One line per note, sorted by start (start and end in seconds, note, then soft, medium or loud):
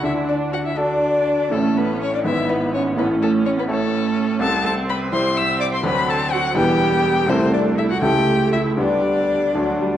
0.03 1.47 D2 medium
0.03 1.47 D3 soft
0.03 0.75 D4 soft
0.03 0.29 E4 medium
0.03 0.13 E5 medium
0.27 0.53 D4 medium
0.27 0.36 D5 medium
0.52 0.63 F#4 medium
0.52 0.58 F#5 medium
0.64 0.75 E4 medium
0.64 0.79 E5 medium
0.76 1.52 D4 medium
0.76 1.47 D4 soft
0.76 1.53 D4 medium
0.76 1.47 F#4 soft
0.76 1.47 A4 soft
0.76 1.53 D5 medium
1.51 2.23 A1 soft
1.51 2.23 A2 medium
1.51 1.77 A3 medium
1.51 2.21 C#4 soft
1.51 2.25 C#4 soft
1.51 2.21 E4 soft
1.51 2.21 A4 soft
1.51 1.78 A4 medium
1.75 2.02 B3 medium
1.75 2.01 B4 medium
2.00 2.13 C#4 medium
2.00 2.13 C#5 medium
2.12 2.25 D4 medium
2.12 2.19 D5 medium
2.23 2.95 G#1 medium
2.23 2.95 G#2 medium
2.23 2.93 B3 soft
2.23 2.99 B3 medium
2.23 2.47 E4 medium
2.23 2.93 E4 soft
2.23 2.93 B4 soft
2.23 2.51 E5 medium
2.48 2.56 B3 medium
2.48 2.73 B4 medium
2.72 2.94 C#4 medium
2.72 2.82 C#5 medium
2.95 4.37 A1 medium
2.95 4.37 A2 medium
2.95 3.19 B3 medium
2.95 3.68 C#4 medium
2.95 3.06 B4 medium
3.19 3.46 A3 medium
3.19 3.30 A4 medium
3.45 3.58 C#4 medium
3.45 3.50 C#5 medium
3.57 3.70 B3 medium
3.57 3.63 B4 medium
3.68 4.36 A3 medium
3.68 4.39 A3 medium
3.68 4.42 C#4 medium
3.68 4.37 E4 medium
3.68 4.40 A4 medium
3.68 4.37 C#5 medium
4.40 5.80 C2 medium
4.40 5.80 C3 medium
4.40 5.13 C4 medium
4.40 4.48 A4 medium
4.40 4.65 A5 medium
4.64 4.72 A4 medium
4.64 4.73 A5 medium
4.88 5.13 B4 medium
4.88 4.97 B5 medium
5.12 5.80 G3 medium
5.12 5.83 C4 medium
5.12 5.80 E4 medium
5.12 5.35 C5 medium
5.12 5.80 C5 medium
5.12 5.38 C6 loud
5.35 5.59 E5 medium
5.35 5.60 E6 medium
5.59 5.64 D5 medium
5.59 5.65 D6 medium
5.71 5.82 C5 medium
5.71 5.85 C6 medium
5.83 6.53 D2 medium
5.83 6.53 D3 medium
5.83 6.51 F#3 medium
5.83 6.55 C4 medium
5.83 6.51 D4 medium
5.83 6.07 B4 medium
5.83 6.52 C5 medium
5.83 6.11 B5 loud
6.07 6.15 A4 medium
6.07 6.34 A5 medium
6.32 6.55 F#4 medium
6.32 6.56 F#5 medium
6.55 7.26 E1 medium
6.55 7.26 E2 medium
6.55 7.24 G3 medium
6.55 7.27 B3 medium
6.55 7.24 G4 medium
6.55 7.30 G4 medium
6.55 7.24 B4 medium
6.55 7.31 G5 loud
7.28 7.99 C2 medium
7.28 7.99 C3 medium
7.28 7.97 G3 soft
7.28 7.98 A3 medium
7.28 7.55 C4 medium
7.28 7.98 E4 medium
7.28 7.98 A4 medium
7.28 7.53 C5 medium
7.53 7.79 D4 medium
7.53 7.61 D5 medium
7.77 7.92 E4 medium
7.77 7.83 E5 medium
7.91 8.05 F#4 medium
7.91 8.02 F#5 medium
8.01 8.75 C#2 medium
8.01 8.75 C#3 medium
8.01 8.74 A3 soft
8.01 8.79 A3 medium
8.01 8.74 E4 soft
8.01 8.54 G4 medium
8.01 8.74 A4 soft
8.01 8.51 G5 medium
8.53 8.78 E4 medium
8.53 8.61 E5 medium
8.77 9.52 D2 medium
8.77 9.52 D3 medium
8.77 9.54 G3 medium
8.77 9.51 B3 soft
8.77 9.51 D4 soft
8.77 9.97 D4 medium
8.77 9.51 G4 soft
8.77 9.97 D5 medium
9.54 9.97 D2 medium
9.54 9.97 D3 medium
9.54 9.82 F#3 medium
9.54 9.97 A3 soft
9.54 9.97 D4 soft
9.54 9.97 F#4 soft
9.80 9.97 G3 medium